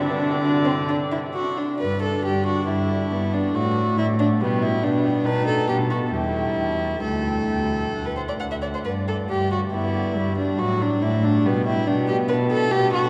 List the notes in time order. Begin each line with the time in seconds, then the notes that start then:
Already playing: D3 D4
0.00 D5
0.09 B3
0.20 D4
0.31 B3
0.43 D4
0.65 C4
0.89 D4
1.12 E4
1.34 F#4
1.57 D4
1.80 G2 D4 B4 D5
2.03 A4 D5
2.24 G2 G4 D5
2.46 F#4 D5
2.69 G2 E4 D5
2.90 D5
3.12 G2 B3 D5
3.33 D4 D5
3.55 A2 A3 F#4 D5
3.77 D5
3.98 A2 E4 D5
4.19 D4 D5
4.41 B2 G3 B3 G5
4.62 E4 G5
4.83 B2 B3 D4 G5
5.04 G5
5.25 B2 D#4 B4 A5
5.47 A4 A5
5.69 B2 B3 G4 A5
5.91 F#4 A5
6.12 E2 G3 E4 G5
6.34 G5
6.57 E2 G5
6.80 G5
7.03 D2 A3 A4 G5
7.28 G5
7.50 D2 G5
7.73 G5
7.95 D2 F#5
8.06 B4
8.17 C5 F#5
8.29 D5
8.40 D2 F#5
8.51 E5
8.62 D5 F#5
8.74 C5
8.85 G2 B4 D5
9.08 A4 D5
9.30 G2 G4 D5
9.52 F#4 D5
9.73 G2 B3 E4 D5
9.95 D5
10.16 G2 G3 D5
10.38 D4 D5
10.59 A2 F#3 F#4 D5
10.81 D4 D5
11.02 A2 A3 E4 D5
11.24 D4 D5
11.45 B2 G3 B3 G5
11.67 E4 G5
11.87 B2 B3 D4 G5
12.08 G4 G5
12.29 B2 B4 A5
12.51 A4 A5
12.71 B2 B3 G4 A5
12.93 F#4 A5